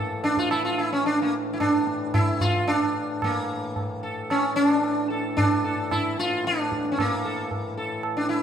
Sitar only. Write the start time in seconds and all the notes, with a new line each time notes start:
Already playing: A#3 A4
0.24 D4
0.39 F4
0.51 E4
0.65 F4
0.79 E4
0.93 C#4
1.06 D4
1.22 A#3
1.53 E4
1.60 D4
2.14 E4
2.41 F4
2.68 D4
3.24 A#3
4.03 A4
4.31 C#4
4.56 C#4
4.67 D4
5.10 A4
5.37 D4
5.64 A4
5.92 E4
6.19 F4
6.47 D4
6.92 C#4
7.00 A#3
7.25 A4
7.77 A4
8.17 D4
8.29 E4